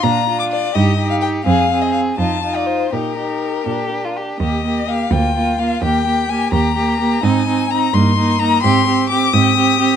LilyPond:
<<
  \new Staff \with { instrumentName = "Violin" } { \time 6/8 \key ees \major \tempo 4. = 85 bes''8. d'''16 d''8 ees''8. f''16 g''8 | f''8. ees''16 f''8 a''8. d''16 c''8 | bes'2~ bes'8 r8 | ees''4 f''8 g''4 f''8 |
g''4 aes''8 bes''4. | aes''4 bes''8 c'''4 bes''8 | c'''4 d'''8 ees'''4. | }
  \new Staff \with { instrumentName = "Violin" } { \time 6/8 \key ees \major f'8 f'4 g'8 g'4 | aes'8 aes'4 f'8 f'4 | g'8 g'4 g'8. f'16 g'8 | g'8 g'8 g'8 f'8 f'8 f'8 |
g'8 g'8 g'8 g'8 g'8 g'8 | ees'8 ees'8 ees'8 ees'8 ees'8 ees'8 | g'8 g'8 g'8 g'8 g'8 g'8 | }
  \new Staff \with { instrumentName = "Viola" } { \time 6/8 \key ees \major d'8 d'4 ees'8 ees'4 | c'8 c'4 ees'8 ees'4 | ees'8 ees'4 d'8 d'4 | bes8 bes8 bes8 bes8 bes8 bes8 |
bes8 bes8 bes8 bes8 bes8 bes8 | c'8 c'8 c'8 bes8 bes8 bes8 | c'8 c'8 c'8 c'8 c'8 c'8 | }
  \new Staff \with { instrumentName = "Cello" } { \clef bass \time 6/8 \key ees \major bes,4. g,4. | f,4. f,4. | bes,4. bes,4. | ees,4. d,4. |
ees,4. ees,4. | aes,4. g,4. | aes,4. aes,4. | }
>>